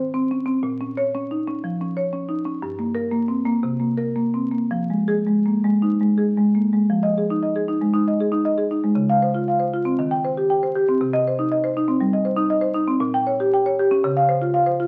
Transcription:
Already playing: C5
0.14 C4
0.31 C#4
0.46 C4
0.63 A#2
0.81 C#4
0.97 C#5
1.15 C#4
1.31 D#4
1.47 C#4
1.64 F3
1.81 C#4
1.97 C#5
2.13 C#4
2.29 D#4
2.45 C#4
2.62 G2
2.79 A#3
2.95 A#4
3.11 A#3
3.28 C4
3.45 A#3
3.63 C3
3.80 A#3
3.97 A#4
4.16 A#3
4.34 C4
4.52 A#3
4.71 F3
4.90 G#3
5.08 G#4
5.27 G#3
5.46 A#3
5.64 G#3
5.82 D#4
6.01 G#3
6.18 G#4
6.37 G#3
6.55 A#3
6.73 G#3
6.90 F3
7.03 D#5
7.18 G#4
7.30 D#4
7.43 D#5
7.56 G#4
7.68 D#4
7.81 G#3
7.94 D#4
8.08 D#5
8.20 G#4
8.32 D#4
8.45 D#5
8.58 G#4
8.71 D#4
8.84 G#3
8.95 C#3
9.09 F5
9.22 C5
9.35 F4
9.48 F5
9.59 C5
9.74 F4
9.85 C4
9.99 D#3
10.11 G5
10.25 C5
10.37 G4
10.50 G5
10.63 C5
10.75 G4
10.89 C4
11.01 C3
11.13 D#5
11.28 C5
11.39 D#4
11.52 D#5
11.64 C5
11.77 D#4
11.88 C4
12.01 G3
12.13 D#5
12.25 C5
12.37 D#4
12.50 D#5
12.61 C5
12.74 D#4
12.88 C4
13.00 A#2
13.14 G5
13.27 C#5
13.40 G4
13.54 G5
13.66 C#5
13.79 G4
13.91 C#4
14.04 C#3
14.17 F5
14.29 C5
14.42 F4
14.54 F5
14.66 C5
14.80 F4

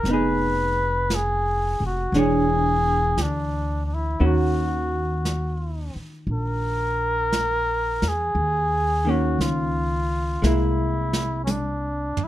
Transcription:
Already playing: A#4
0.04 F1, brush sweep, snare
0.08 B3 D#4 B4
0.13 G#4
1.10 brush sweep, snare, hi-hat pedal
1.14 G#4
1.80 F1
1.86 F#4
2.12 E1 E3 D4 G#4, brush sweep, snare
2.16 G#4 C#5
3.17 D2, brush sweep, snare, hi-hat pedal
3.22 D4
3.85 D4
3.94 E4
4.20 D#2 D#3 A#3 C#4 F#4, brush sweep
4.26 F#4
5.25 brush sweep, snare, hi-hat pedal
5.96 muted upright bass stroke
6.27 A#1, brush sweep
6.32 A#4
7.33 brush sweep, snare, hi-hat pedal
8.02 E2, snare
8.08 G#4
8.35 D#2, brush sweep
9.05 D#3 A#3 C#4
9.10 F#4
9.39 C#2 F4, brush sweep, snare, hi-hat pedal
10.42 C2 G#3 A#3 E4, snare
10.46 E4
11.13 snare
11.44 C#4, hi-hat pedal, high tom
11.50 D4
12.17 muted upright bass stroke, floor tom
12.24 E4

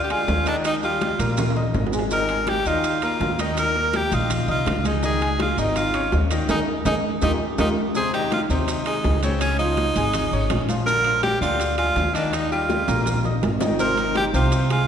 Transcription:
Already playing: D2
0.04 G4
0.10 G#3 F4 G#4 G#5, high bongo, high conga, high timbale, maracas
0.28 D#2, high bongo, low bongo, high conga, low timbale, maracas
0.46 D#3 D4 D#4 D#5, high timbale, maracas
0.64 D#4, high bongo, high conga, high timbale, maracas
0.83 G3 F4 G4 G5, high bongo, high conga, maracas
1.01 high bongo, high conga, high timbale, low timbale, maracas
1.19 A#1 A#3 A#4 A#5, high bongo, high conga, high timbale, maracas
1.37 high bongo, high conga, low conga, high timbale, maracas
1.50 high timbale
1.56 D#4 D#5 D#6, high conga, low conga, maracas
1.74 G#1, high bongo, low bongo, high conga, low timbale, maracas
1.87 low timbale
1.93 G#3 G#4 G#5, high bongo, high conga, maracas
1.99 low timbale
2.11 D#3 D#4 A#4 D#5, high bongo, high conga, maracas
2.29 G#3 G#4 G#5, high bongo, high conga, high timbale, maracas
2.47 G4, high bongo, high conga, high timbale, low timbale, maracas
2.65 D#2 D#3 D#4 F4 D#5, high bongo, high conga, maracas
2.84 high bongo, high conga, high timbale, maracas
3.02 A#3 F4 A#4 A#5, high bongo, high conga, high timbale, maracas
3.20 D#2, high bongo, low bongo, high conga, low timbale, maracas
3.39 D#3 D#4 D#5, high conga, high timbale, maracas
3.57 A#4, high bongo, high conga, high timbale, maracas
3.75 A#3 A#4 A#5, high bongo, high conga, maracas
3.93 G4, high bongo, high conga, high timbale, low timbale, maracas
4.12 A#1 D#4 F4 D#5 D#6, high bongo, high conga, high timbale, maracas
4.30 high bongo, high conga, low conga, high timbale, maracas
4.48 C2 D#4 F4 D#5 D#6, high conga, low conga, maracas
4.66 C#2, high bongo, low bongo, high conga, high timbale, low timbale, maracas
4.85 G#3 D#4 G#4 G#5, high bongo, high conga, high timbale, maracas
5.03 D#3 D#4 G#4 D#5, high bongo, high conga, maracas
5.21 G#3 G#4 G#5, high bongo, high conga, high timbale, maracas
5.39 F4, high bongo, high conga, high timbale, low timbale, maracas
5.57 G#1 D#3 D#4 D#5, high bongo, high conga, maracas
5.76 F4, high bongo, high conga, high timbale, maracas
5.94 C#4 C#5 C#6, high bongo, high timbale, maracas
6.12 D#2, high bongo, low bongo, high conga, low timbale, maracas
6.31 D#3 D#4 D#5, high timbale, maracas
6.49 D#2 D#4 G#4 A#4, low bongo, high conga, high timbale, maracas
6.85 D#2 D#4 G#4 A#4, low bongo, high conga, high timbale, maracas
7.22 D#2 D#4 F4 G4 A#4, low bongo, high conga, high timbale, maracas
7.58 D#2 D#4 F4 G4 A#4, low bongo, high conga, high timbale, maracas
7.95 C3 C4 G#4 C5, high bongo, high conga, maracas
8.13 D#3 D#4 G4 D#5, high bongo, high conga, high timbale, maracas
8.32 F4, high bongo, high conga, high timbale, low timbale, maracas
8.49 D#2 C3 C4 D#4 C5, high bongo, high conga, maracas
8.68 high bongo, high conga, high timbale, maracas
8.86 G#3 D#4 G#4 G#5, high bongo, high conga, high timbale, maracas
9.04 C#2, high bongo, low bongo, high conga, low timbale, maracas
9.23 C#3 C4 C#4 C#5, high conga, high timbale, maracas
9.41 C#4, high bongo, high conga, high timbale, maracas
9.59 F3 D#4 F4 F5, high bongo, high conga, maracas
9.77 high bongo, high conga, high timbale, low timbale, maracas
9.96 G#1 G#3 G#4 G#5, high bongo, high conga, high timbale, maracas
10.14 high bongo, high conga, low conga, high timbale, maracas
10.32 G#1 C#4 C#5 C#6, high conga, maracas
10.50 A#1, high bongo, low bongo, high conga, high timbale, low timbale, maracas
10.69 F3 F4 F5, high bongo, high conga, high timbale, maracas
10.86 D3 D4 A#4 D5, high bongo, high conga, maracas
11.05 F3 F4 F5, high bongo, high conga, high timbale, maracas
11.23 G4, high bongo, high conga, high timbale, low timbale, maracas
11.41 D2 D3 D4 F4 D5, high bongo, high conga, maracas
11.60 high bongo, high conga, high timbale, maracas
11.78 G#3 F4 G#4 G#5, high bongo, high conga, high timbale
11.96 D#2, high bongo, low bongo, high conga, low timbale, maracas
12.15 D#3 D4 D#4 D#5, high conga, high timbale, maracas
12.33 D#4, high bongo, high conga, high timbale, maracas
12.51 G3 F4 G4 G5, high bongo, high conga, maracas
12.69 high bongo, high conga, high timbale, maracas
12.88 A#1 A#3 A#4 A#5, high bongo, high conga, high timbale, maracas
13.06 high bongo, high conga, low conga, low timbale, maracas
13.24 D#4 D#5 D#6, high bongo, high conga, low conga, maracas
13.43 G#1, high conga, low timbale, maracas
13.61 D#3 D#4 D#5, low bongo, high conga, low timbale, maracas
13.79 C3 C4 A#4 C5, high bongo, high conga, maracas
13.97 D#3 D#4 D#5, high bongo, high conga, high timbale, maracas
14.15 G4, high bongo, high conga, high timbale, low timbale, maracas
14.33 C2 C3 C4 F4 C5, high bongo, high conga, maracas
14.52 high bongo, high timbale, maracas
14.70 G#3 F4 G#4 G#5, high bongo, high conga, high timbale, maracas

